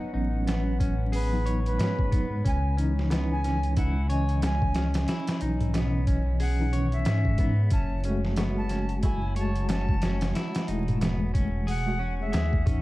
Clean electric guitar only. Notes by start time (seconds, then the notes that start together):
Already playing: D#4
0.14 D#4
0.47 B3
0.80 C#4
1.12 G#4
1.46 C#5
1.79 C#4
2.11 B3
2.44 C#4
2.77 C#4
3.11 B3
3.44 C#4
3.77 E4
4.09 C#5
4.43 C#4
4.75 C#4
5.08 E4
5.42 D#4
5.74 B3
6.07 C#4
6.40 G#4
6.73 C#5
7.06 C#4
7.39 B3
7.72 C#4
8.05 C#4
8.38 B3
8.70 C#4
9.03 E4
9.36 C#5
9.69 C#4
10.02 C#4
10.35 E4
10.68 D#4
11.01 B3
11.34 C#4
11.67 G#4
11.99 C#4
12.32 G#4
12.66 C#4